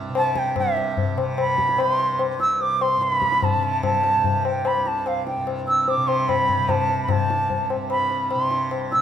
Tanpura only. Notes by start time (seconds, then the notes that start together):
Already playing: C2 G2 C3
0.10 C3
0.58 G2
1.16 C3
1.76 C3
2.38 C2
2.97 G2
3.55 C3
4.17 C3
4.76 C2
5.37 G2
5.97 C3
6.58 C3
7.14 C2
7.76 G2
8.35 C3
8.95 C3